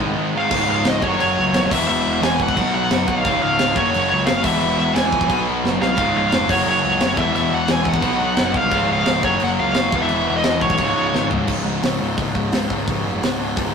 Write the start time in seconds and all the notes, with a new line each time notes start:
Already playing: G#2 D#3 G#3
0.00 C2 G#2 D#3 G#3
0.17 G#2 D#3 G#3
0.35 G#2 D#3 G#3 F5
0.50 C#1 C#2 G#2 C#3 G#3 F4, kick, crash
0.70 C#1 F5
0.85 C#1 D#5, snare, crash
1.01 F#1 F#2 C#3 F#3 A#3 C#4 F#4 C#5, kick
1.20 F#1 C#5, crash
1.39 C#2
1.52 D#1 F#2 C#3 F#3, snare, crash
1.71 E1 E2 B2 E3 G#3 B3 E4 E5, kick, crash
1.88 E1 E5, crash
2.06 E1
2.20 E1 E2 B2 E3 G#5, snare, crash
2.40 E1 F#5, kick
2.49 kick
2.57 B1 B2 F#3 B3 D#4 F#4 B4, kick, crash
2.73 B1 F#5
2.90 F#1, snare, crash
3.06 B1 B2 F#3 B3, kick
3.10 F5
3.25 C#1 C#2 G#2 C#3 G#3 F4, kick, crash
3.42 C#1 F5
3.59 C#1, snare, crash
3.74 F#1 F#2 C#3 F#3 A#3 C#4 F#4 C#5, kick
3.94 F#1, crash
4.09 C#2 C#5
4.26 F#1 F#2 C#3 F#3 F5, snare, crash
4.42 E1 E2 B2 E3 G#3 B3 E4 E5, kick, crash
4.46 E3
4.61 E1, crash
4.78 E1 E5
4.94 E1 E2 B2 E3 G#5, snare, crash
5.12 A#1, kick
5.21 kick
5.26 B2 F#3 B3 D#4 F#4 B4, kick
5.30 B1 B3, crash
5.48 B1
5.64 F#1, snare
5.80 C2 B2 F#3 B3 F5, snare
5.96 C#1 C#2 G#2 C#3 G#3 F4, kick, crash
6.01 C#3
6.16 C#1 F5
6.32 F1, snare, crash
6.46 F#2 C#3 F#3 A#3 C#4 F#4, kick
6.50 F#1 C#5, crash
6.66 F#1 C#5, crash
6.84 C#2
6.99 F#1 F#2 C#3 F#3, snare, crash
7.15 E1 E2 B2 E3 G#3 B3 E4 E5, kick
7.20 E3
7.35 E1 E5, crash
7.52 E1 F#5
7.67 E1 E2 B2 E3, snare, crash
7.72 G#5
7.85 E1 F#5, kick
7.94 kick
8.00 B1 B2 F#3 B3 D#4 F#4 B4, kick, crash
8.06 B3
8.22 B1
8.37 F#1, snare, crash
8.54 C2 B2 F#3 B3 F5, kick
8.70 C#1 C#2 G#2 C#3 G#3 F4, kick, crash
8.89 C#1 F5
9.06 C#1, snare, crash
9.23 F#1 F#2 C#3 F#3 A#3 C#4 F#4 C#5, kick
9.40 F#1, crash
9.44 F#5
9.60 C#2 F5
9.74 F#1 F#2 C#3 F#3, snare, crash
9.92 E1 E2 B2 E3 G#3 B3 E4, kick
10.01 E5
10.09 E1, crash
10.30 E1
10.37 D#5
10.43 E1 E2 B2 E3, snare, crash
10.61 B1 C#5, kick
10.70 kick
10.77 C#1 C#2 G#2 C#3, kick, crash
10.82 G#3 F4
10.96 C#1
11.14 G#1, snare
11.30 C#1 C#2 G#2 C#3, floor tom
11.46 C#1 C#2 G#2 C#3, kick, crash
11.64 C#2 G#2 C#3
11.82 C#1 C#2 G#2 C#3, snare, open hi-hat
11.99 C#1 C#2 G#2 C#3
12.16 C#1 C#2 G#2 C#3, kick, open hi-hat
12.33 C#1 C#2 G#2 C#3, kick
12.51 C#1 C#2 G#2 C#3, snare, open hi-hat
12.69 C#2 G#2 C#3, kick
12.87 C#1 C#2 G#2 C#3, kick, open hi-hat
13.05 F#1 C#2 G#2 C#3
13.23 C#1 C#2 G#2 C#3, snare, open hi-hat
13.39 C#2 G#2 C#3
13.55 C#1 C#2 G#2 C#3, kick, open hi-hat